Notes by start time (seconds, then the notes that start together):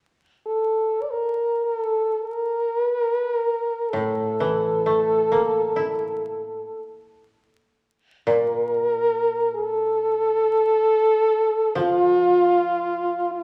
0.46 A4
1.03 D5
1.11 A#4
1.64 A#4
1.78 A4
2.24 A#4
2.83 B4
2.99 A#4
3.16 B4
3.32 A#4
3.90 A2 A4
4.40 E3
4.86 A3
5.32 A#3
5.76 E4
8.27 A#2 A#4
9.54 A4
11.75 F3 F4
13.32 F4